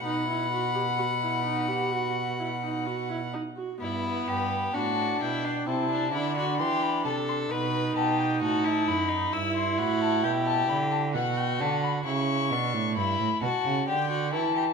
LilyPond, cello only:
\new Staff \with { instrumentName = "Cello" } { \clef bass \time 4/4 \key e \minor \tempo 4 = 66 b,2.~ b,8 r8 | g,8 g,8 a,8 b,8 c8 d8 e8 c8 | b,8 b,8 a,8 fis,8 g,8 a,8 b,8 d8 | b,8 d8 cis8 b,16 a,16 g,16 a,16 b,16 cis16 d8 e8 | }